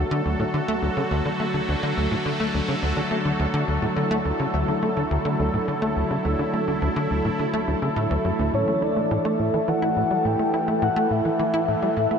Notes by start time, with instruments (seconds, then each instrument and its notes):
Already playing: analog synth pad D3 F#3 A3 F#4 A4
0.11 analog synth bass D3
0.26 analog synth bass D2
0.40 analog synth bass A2
0.54 analog synth bass D3
0.68 analog synth bass A3
0.82 analog synth bass D2
0.97 analog synth bass C#3
1.11 analog synth bass D2
1.26 analog synth bass D3
1.40 analog synth bass A3
1.54 analog synth bass D3
1.69 analog synth bass D2
1.83 analog synth bass D3
1.97 analog synth bass D2
2.11 analog synth bass A2
2.26 analog synth bass D3
2.40 analog synth bass A3
2.54 analog synth bass D2
2.68 analog synth bass C#3
2.83 analog synth bass D2
2.97 analog synth bass D3
3.11 analog synth bass A3
3.25 analog synth bass D3
3.40 analog synth bass D2
3.54 analog synth bass D3
3.68 analog synth bass D2
3.82 analog synth bass A2
3.96 analog synth bass D3, analog synth pad E4
4.11 analog synth bass A3
4.25 analog synth bass D2
4.40 analog synth bass C#3
4.54 analog synth bass D2
4.68 analog synth bass D3
4.83 analog synth bass A3
4.97 analog synth bass D3
5.11 analog synth bass D2
5.25 analog synth bass D3
5.40 analog synth bass D2
5.54 analog synth bass A2
5.68 analog synth bass D3
5.82 analog synth bass A3
5.96 analog synth bass D2
6.11 analog synth bass C#3
6.25 analog synth bass D2
6.39 analog synth bass D3
6.54 analog synth bass A3
6.68 analog synth bass D3
6.82 analog synth bass D2
6.96 analog synth bass D3
7.11 analog synth bass D2
7.25 analog synth bass A2
7.39 analog synth bass D3
7.54 analog synth bass A3
7.68 analog synth bass D2
7.82 analog synth bass C#3
7.96 analog synth bass A2
8.11 analog synth bass D2
8.25 analog synth bass F#2
8.39 analog synth bass D2
8.54 analog synth bass A2, analog synth pad E3, soft synth lead C#5
8.68 analog synth bass A3
8.82 analog synth bass E4, soft synth lead D5
8.96 analog synth bass A3
9.11 analog synth bass A2
9.25 analog synth bass A3
9.39 analog synth bass A2, soft synth lead E5
9.54 analog synth bass E3
9.68 analog synth bass E3, soft synth lead F#5
9.82 analog synth bass E4
9.97 analog synth bass A2
10.11 analog synth bass G3
10.25 analog synth bass A2, soft synth lead G5
10.39 analog synth bass A3
10.54 analog synth bass E4
10.68 analog synth bass A3
10.82 analog synth bass A2, soft synth lead F#5
10.96 analog synth bass A3
11.11 analog synth bass A2, soft synth lead E5
11.25 analog synth bass E3
11.39 analog synth bass E3
11.54 analog synth bass E4
11.68 analog synth bass A2
11.82 analog synth bass G3
11.97 analog synth bass A2
12.11 analog synth bass A3